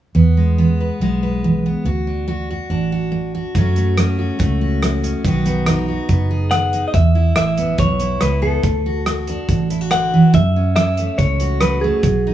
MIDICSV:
0, 0, Header, 1, 5, 480
1, 0, Start_track
1, 0, Key_signature, 4, "major"
1, 0, Tempo, 424628
1, 166, Time_signature, 4, 2, 24, 8
1, 13948, End_track
2, 0, Start_track
2, 0, Title_t, "Clean electric guitar"
2, 0, Program_c, 0, 27
2, 7356, Note_on_c, 0, 78, 76
2, 7768, Note_off_c, 0, 78, 0
2, 7773, Note_on_c, 0, 75, 52
2, 7849, Note_off_c, 0, 75, 0
2, 7853, Note_on_c, 0, 76, 74
2, 8298, Note_off_c, 0, 76, 0
2, 8329, Note_on_c, 0, 76, 79
2, 8808, Note_off_c, 0, 76, 0
2, 8812, Note_on_c, 0, 73, 85
2, 9291, Note_on_c, 0, 71, 76
2, 9305, Note_off_c, 0, 73, 0
2, 9513, Note_off_c, 0, 71, 0
2, 9524, Note_on_c, 0, 69, 70
2, 11159, Note_off_c, 0, 69, 0
2, 11208, Note_on_c, 0, 78, 80
2, 11691, Note_off_c, 0, 78, 0
2, 11696, Note_on_c, 0, 76, 75
2, 12146, Note_off_c, 0, 76, 0
2, 12160, Note_on_c, 0, 76, 86
2, 12639, Note_on_c, 0, 73, 84
2, 12657, Note_off_c, 0, 76, 0
2, 13088, Note_off_c, 0, 73, 0
2, 13126, Note_on_c, 0, 71, 69
2, 13354, Note_on_c, 0, 68, 79
2, 13373, Note_off_c, 0, 71, 0
2, 13948, Note_off_c, 0, 68, 0
2, 13948, End_track
3, 0, Start_track
3, 0, Title_t, "Steel-string acoustic guitar"
3, 0, Program_c, 1, 25
3, 167, Note_on_c, 1, 40, 62
3, 174, Note_on_c, 1, 59, 54
3, 421, Note_on_c, 1, 56, 47
3, 599, Note_off_c, 1, 40, 0
3, 651, Note_off_c, 1, 59, 0
3, 660, Note_on_c, 1, 52, 61
3, 667, Note_on_c, 1, 59, 51
3, 910, Note_on_c, 1, 71, 46
3, 1087, Note_off_c, 1, 52, 0
3, 1136, Note_off_c, 1, 56, 0
3, 1146, Note_on_c, 1, 47, 62
3, 1152, Note_on_c, 1, 56, 59
3, 1374, Note_off_c, 1, 71, 0
3, 1387, Note_on_c, 1, 71, 53
3, 1570, Note_off_c, 1, 47, 0
3, 1631, Note_on_c, 1, 52, 58
3, 1860, Note_off_c, 1, 59, 0
3, 1875, Note_on_c, 1, 59, 56
3, 2053, Note_off_c, 1, 52, 0
3, 2071, Note_off_c, 1, 71, 0
3, 2073, Note_off_c, 1, 56, 0
3, 2097, Note_on_c, 1, 50, 67
3, 2103, Note_off_c, 1, 59, 0
3, 2106, Note_on_c, 1, 66, 62
3, 2341, Note_on_c, 1, 62, 47
3, 2526, Note_off_c, 1, 50, 0
3, 2573, Note_on_c, 1, 57, 58
3, 2576, Note_off_c, 1, 66, 0
3, 2580, Note_on_c, 1, 66, 55
3, 2827, Note_off_c, 1, 66, 0
3, 2832, Note_on_c, 1, 66, 50
3, 3006, Note_off_c, 1, 57, 0
3, 3047, Note_off_c, 1, 62, 0
3, 3052, Note_on_c, 1, 45, 58
3, 3061, Note_on_c, 1, 62, 54
3, 3299, Note_off_c, 1, 66, 0
3, 3304, Note_on_c, 1, 66, 54
3, 3484, Note_off_c, 1, 45, 0
3, 3523, Note_on_c, 1, 57, 58
3, 3778, Note_off_c, 1, 66, 0
3, 3783, Note_on_c, 1, 66, 60
3, 3960, Note_off_c, 1, 57, 0
3, 3988, Note_off_c, 1, 62, 0
3, 4016, Note_on_c, 1, 42, 70
3, 4023, Note_on_c, 1, 54, 57
3, 4032, Note_on_c, 1, 57, 57
3, 4038, Note_on_c, 1, 61, 57
3, 4045, Note_off_c, 1, 66, 0
3, 4049, Note_on_c, 1, 66, 62
3, 4249, Note_off_c, 1, 57, 0
3, 4262, Note_on_c, 1, 57, 46
3, 4446, Note_off_c, 1, 42, 0
3, 4485, Note_off_c, 1, 54, 0
3, 4488, Note_off_c, 1, 61, 0
3, 4490, Note_on_c, 1, 54, 62
3, 4502, Note_on_c, 1, 61, 53
3, 4729, Note_off_c, 1, 66, 0
3, 4733, Note_on_c, 1, 66, 46
3, 4923, Note_off_c, 1, 54, 0
3, 4953, Note_off_c, 1, 57, 0
3, 4960, Note_on_c, 1, 49, 67
3, 4966, Note_on_c, 1, 57, 58
3, 5201, Note_off_c, 1, 66, 0
3, 5214, Note_on_c, 1, 66, 53
3, 5398, Note_off_c, 1, 49, 0
3, 5450, Note_on_c, 1, 54, 62
3, 5677, Note_off_c, 1, 61, 0
3, 5691, Note_on_c, 1, 61, 58
3, 5883, Note_off_c, 1, 54, 0
3, 5900, Note_off_c, 1, 57, 0
3, 5903, Note_off_c, 1, 61, 0
3, 5904, Note_off_c, 1, 66, 0
3, 5929, Note_on_c, 1, 47, 75
3, 5936, Note_on_c, 1, 51, 57
3, 5943, Note_on_c, 1, 59, 54
3, 5952, Note_on_c, 1, 63, 62
3, 5960, Note_on_c, 1, 66, 66
3, 6157, Note_off_c, 1, 59, 0
3, 6171, Note_on_c, 1, 59, 58
3, 6362, Note_off_c, 1, 47, 0
3, 6392, Note_off_c, 1, 51, 0
3, 6402, Note_off_c, 1, 63, 0
3, 6405, Note_on_c, 1, 51, 63
3, 6416, Note_on_c, 1, 63, 58
3, 6638, Note_off_c, 1, 66, 0
3, 6652, Note_on_c, 1, 66, 45
3, 6840, Note_off_c, 1, 51, 0
3, 6881, Note_off_c, 1, 59, 0
3, 6890, Note_on_c, 1, 42, 55
3, 6899, Note_on_c, 1, 59, 55
3, 7124, Note_off_c, 1, 66, 0
3, 7128, Note_on_c, 1, 68, 57
3, 7323, Note_off_c, 1, 42, 0
3, 7370, Note_on_c, 1, 51, 52
3, 7604, Note_off_c, 1, 63, 0
3, 7618, Note_on_c, 1, 63, 52
3, 7802, Note_off_c, 1, 51, 0
3, 7820, Note_off_c, 1, 68, 0
3, 7824, Note_off_c, 1, 59, 0
3, 7825, Note_off_c, 1, 63, 0
3, 7841, Note_on_c, 1, 40, 72
3, 8084, Note_on_c, 1, 64, 56
3, 8277, Note_off_c, 1, 40, 0
3, 8334, Note_on_c, 1, 56, 59
3, 8573, Note_on_c, 1, 59, 47
3, 8763, Note_off_c, 1, 56, 0
3, 8807, Note_on_c, 1, 40, 64
3, 9037, Note_off_c, 1, 64, 0
3, 9051, Note_on_c, 1, 64, 66
3, 9240, Note_off_c, 1, 40, 0
3, 9280, Note_on_c, 1, 56, 54
3, 9503, Note_off_c, 1, 59, 0
3, 9517, Note_on_c, 1, 59, 55
3, 9716, Note_off_c, 1, 56, 0
3, 9734, Note_off_c, 1, 59, 0
3, 9741, Note_off_c, 1, 64, 0
3, 9762, Note_on_c, 1, 50, 69
3, 10015, Note_on_c, 1, 66, 57
3, 10197, Note_off_c, 1, 50, 0
3, 10248, Note_on_c, 1, 57, 63
3, 10505, Note_on_c, 1, 62, 52
3, 10679, Note_off_c, 1, 57, 0
3, 10737, Note_on_c, 1, 45, 61
3, 10964, Note_off_c, 1, 66, 0
3, 10969, Note_on_c, 1, 64, 62
3, 11089, Note_off_c, 1, 64, 0
3, 11089, Note_on_c, 1, 66, 50
3, 11164, Note_off_c, 1, 45, 0
3, 11214, Note_on_c, 1, 50, 55
3, 11450, Note_off_c, 1, 50, 0
3, 11459, Note_on_c, 1, 52, 66
3, 11667, Note_off_c, 1, 62, 0
3, 11687, Note_off_c, 1, 66, 0
3, 11689, Note_on_c, 1, 42, 71
3, 11692, Note_off_c, 1, 52, 0
3, 11940, Note_on_c, 1, 61, 47
3, 12119, Note_off_c, 1, 42, 0
3, 12168, Note_on_c, 1, 54, 64
3, 12431, Note_on_c, 1, 57, 53
3, 12599, Note_off_c, 1, 54, 0
3, 12660, Note_on_c, 1, 49, 68
3, 12896, Note_on_c, 1, 66, 65
3, 13085, Note_off_c, 1, 49, 0
3, 13127, Note_on_c, 1, 54, 57
3, 13371, Note_off_c, 1, 57, 0
3, 13384, Note_on_c, 1, 57, 53
3, 13558, Note_off_c, 1, 54, 0
3, 13584, Note_off_c, 1, 61, 0
3, 13586, Note_off_c, 1, 57, 0
3, 13614, Note_on_c, 1, 47, 71
3, 13867, Note_on_c, 1, 63, 57
3, 13948, Note_off_c, 1, 47, 0
3, 13948, Note_off_c, 1, 63, 0
3, 13948, Note_off_c, 1, 66, 0
3, 13948, End_track
4, 0, Start_track
4, 0, Title_t, "Fingered electric bass"
4, 0, Program_c, 2, 33
4, 168, Note_on_c, 2, 40, 73
4, 995, Note_off_c, 2, 40, 0
4, 1133, Note_on_c, 2, 35, 71
4, 1958, Note_off_c, 2, 35, 0
4, 2087, Note_on_c, 2, 38, 74
4, 2915, Note_off_c, 2, 38, 0
4, 3048, Note_on_c, 2, 33, 59
4, 3876, Note_off_c, 2, 33, 0
4, 4010, Note_on_c, 2, 42, 71
4, 4837, Note_off_c, 2, 42, 0
4, 4975, Note_on_c, 2, 37, 76
4, 5799, Note_off_c, 2, 37, 0
4, 5928, Note_on_c, 2, 35, 80
4, 6755, Note_off_c, 2, 35, 0
4, 6887, Note_on_c, 2, 30, 63
4, 7713, Note_off_c, 2, 30, 0
4, 7840, Note_on_c, 2, 40, 79
4, 8257, Note_off_c, 2, 40, 0
4, 8328, Note_on_c, 2, 33, 61
4, 8736, Note_off_c, 2, 33, 0
4, 8804, Note_on_c, 2, 35, 68
4, 9214, Note_off_c, 2, 35, 0
4, 9284, Note_on_c, 2, 37, 76
4, 9694, Note_off_c, 2, 37, 0
4, 9761, Note_on_c, 2, 38, 86
4, 10589, Note_off_c, 2, 38, 0
4, 10726, Note_on_c, 2, 33, 66
4, 11551, Note_off_c, 2, 33, 0
4, 11683, Note_on_c, 2, 42, 81
4, 12509, Note_off_c, 2, 42, 0
4, 12644, Note_on_c, 2, 37, 76
4, 13470, Note_off_c, 2, 37, 0
4, 13597, Note_on_c, 2, 35, 77
4, 13948, Note_off_c, 2, 35, 0
4, 13948, End_track
5, 0, Start_track
5, 0, Title_t, "Drums"
5, 4012, Note_on_c, 9, 36, 87
5, 4017, Note_on_c, 9, 42, 46
5, 4126, Note_off_c, 9, 36, 0
5, 4130, Note_off_c, 9, 42, 0
5, 4251, Note_on_c, 9, 42, 48
5, 4364, Note_off_c, 9, 42, 0
5, 4494, Note_on_c, 9, 37, 93
5, 4494, Note_on_c, 9, 42, 56
5, 4607, Note_off_c, 9, 37, 0
5, 4607, Note_off_c, 9, 42, 0
5, 4972, Note_on_c, 9, 36, 98
5, 4973, Note_on_c, 9, 42, 58
5, 5085, Note_off_c, 9, 36, 0
5, 5086, Note_off_c, 9, 42, 0
5, 5455, Note_on_c, 9, 37, 91
5, 5455, Note_on_c, 9, 42, 61
5, 5568, Note_off_c, 9, 37, 0
5, 5568, Note_off_c, 9, 42, 0
5, 5696, Note_on_c, 9, 42, 60
5, 5809, Note_off_c, 9, 42, 0
5, 5929, Note_on_c, 9, 36, 91
5, 5931, Note_on_c, 9, 42, 53
5, 6042, Note_off_c, 9, 36, 0
5, 6044, Note_off_c, 9, 42, 0
5, 6167, Note_on_c, 9, 42, 52
5, 6280, Note_off_c, 9, 42, 0
5, 6403, Note_on_c, 9, 37, 105
5, 6403, Note_on_c, 9, 42, 58
5, 6516, Note_off_c, 9, 37, 0
5, 6516, Note_off_c, 9, 42, 0
5, 6882, Note_on_c, 9, 42, 55
5, 6886, Note_on_c, 9, 36, 97
5, 6995, Note_off_c, 9, 42, 0
5, 6999, Note_off_c, 9, 36, 0
5, 7362, Note_on_c, 9, 37, 92
5, 7362, Note_on_c, 9, 42, 51
5, 7475, Note_off_c, 9, 37, 0
5, 7475, Note_off_c, 9, 42, 0
5, 7608, Note_on_c, 9, 42, 48
5, 7721, Note_off_c, 9, 42, 0
5, 7842, Note_on_c, 9, 42, 50
5, 7843, Note_on_c, 9, 36, 97
5, 7955, Note_off_c, 9, 42, 0
5, 7956, Note_off_c, 9, 36, 0
5, 8317, Note_on_c, 9, 37, 102
5, 8317, Note_on_c, 9, 42, 61
5, 8430, Note_off_c, 9, 37, 0
5, 8430, Note_off_c, 9, 42, 0
5, 8562, Note_on_c, 9, 42, 56
5, 8675, Note_off_c, 9, 42, 0
5, 8796, Note_on_c, 9, 42, 61
5, 8801, Note_on_c, 9, 36, 102
5, 8909, Note_off_c, 9, 42, 0
5, 8914, Note_off_c, 9, 36, 0
5, 9039, Note_on_c, 9, 42, 59
5, 9152, Note_off_c, 9, 42, 0
5, 9277, Note_on_c, 9, 37, 88
5, 9277, Note_on_c, 9, 42, 58
5, 9390, Note_off_c, 9, 37, 0
5, 9390, Note_off_c, 9, 42, 0
5, 9759, Note_on_c, 9, 42, 56
5, 9761, Note_on_c, 9, 36, 103
5, 9872, Note_off_c, 9, 42, 0
5, 9874, Note_off_c, 9, 36, 0
5, 10244, Note_on_c, 9, 37, 95
5, 10244, Note_on_c, 9, 42, 55
5, 10357, Note_off_c, 9, 37, 0
5, 10357, Note_off_c, 9, 42, 0
5, 10484, Note_on_c, 9, 42, 51
5, 10597, Note_off_c, 9, 42, 0
5, 10724, Note_on_c, 9, 36, 95
5, 10725, Note_on_c, 9, 42, 54
5, 10837, Note_off_c, 9, 36, 0
5, 10838, Note_off_c, 9, 42, 0
5, 10969, Note_on_c, 9, 42, 50
5, 11082, Note_off_c, 9, 42, 0
5, 11200, Note_on_c, 9, 37, 96
5, 11200, Note_on_c, 9, 42, 53
5, 11313, Note_off_c, 9, 37, 0
5, 11313, Note_off_c, 9, 42, 0
5, 11683, Note_on_c, 9, 42, 48
5, 11686, Note_on_c, 9, 36, 93
5, 11796, Note_off_c, 9, 42, 0
5, 11799, Note_off_c, 9, 36, 0
5, 12165, Note_on_c, 9, 37, 105
5, 12165, Note_on_c, 9, 42, 53
5, 12278, Note_off_c, 9, 37, 0
5, 12278, Note_off_c, 9, 42, 0
5, 12405, Note_on_c, 9, 42, 49
5, 12518, Note_off_c, 9, 42, 0
5, 12644, Note_on_c, 9, 42, 56
5, 12645, Note_on_c, 9, 36, 109
5, 12757, Note_off_c, 9, 42, 0
5, 12758, Note_off_c, 9, 36, 0
5, 12884, Note_on_c, 9, 42, 59
5, 12997, Note_off_c, 9, 42, 0
5, 13119, Note_on_c, 9, 37, 94
5, 13119, Note_on_c, 9, 42, 52
5, 13232, Note_off_c, 9, 37, 0
5, 13232, Note_off_c, 9, 42, 0
5, 13599, Note_on_c, 9, 42, 57
5, 13601, Note_on_c, 9, 36, 101
5, 13712, Note_off_c, 9, 42, 0
5, 13714, Note_off_c, 9, 36, 0
5, 13948, End_track
0, 0, End_of_file